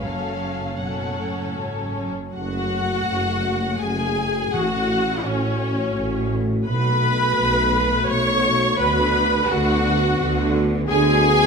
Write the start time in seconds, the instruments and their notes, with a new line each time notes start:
0.03 double bass section F#1, cello section F#2, viola section F#3 C#4, violin section A4 C#5 F5
0.80 cello section B2, viola section F#3 C#4, violin section A4 C#5 F#5
1.18 cello section A2
1.58 cello section G#2
1.97 cello section F#2
2.34 double bass section F#1, tuba F#1, cello section F#2, french horn section A3 F#4, viola section F#4, violin section F#5
3.07 double bass section F#1, tuba F#1, cello section F#2
3.81 double bass section F#1, tuba F#1, cello section F#2, viola section G#4, violin section G#5
4.53 double bass section A1, tuba A1, cello section A2, timpani A2, french horn section A3 F#4, viola section F#4, violin section F#5
5.23 double bass section A1, tuba A1, cello section A2, french horn section A3 F#4, viola section C#4, violin section C#5
5.97 double bass section A1, tuba A1, cello section A2
6.67 double bass section B1, tuba B1, cello section B2, french horn section A3 F#4, viola section B4, violin section B5
7.37 double bass section B1, tuba B1, cello section B2
8.08 tuba B1, double bass section B1, cello section B2, viola section C#5, violin section C#6
8.77 double bass section D2, tuba D2, cello section D3, french horn section B3 F#4, viola section B4, violin section B5
9.48 double bass section D2, tuba D2, cello section D3, french horn section B3 F#4, viola section F#4, violin section F#5
10.18 double bass section D2, tuba D2, cello section D3
10.88 tuba D2, double bass section D2, cello section D3, french horn section B3 F#4, viola section G#4, violin section G#5